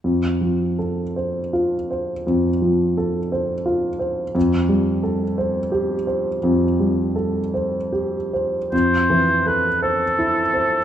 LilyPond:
<<
  \new Staff \with { instrumentName = "Oboe" } { \time 6/8 \key f \major \tempo 4. = 55 r2. | r2. | r2. | r2. |
c''4 b'8 a'4. | }
  \new Staff \with { instrumentName = "Grand piano" } { \time 6/8 \key f \major f,8 f8 a'8 c''8 f'8 c''8 | f,8 f8 a'8 c''8 f'8 c''8 | f,8 g8 a'8 c''8 g'8 c''8 | f,8 g8 a'8 c''8 g'8 c''8 |
f,8 e8 a'8 c''8 e'8 c''8 | }
>>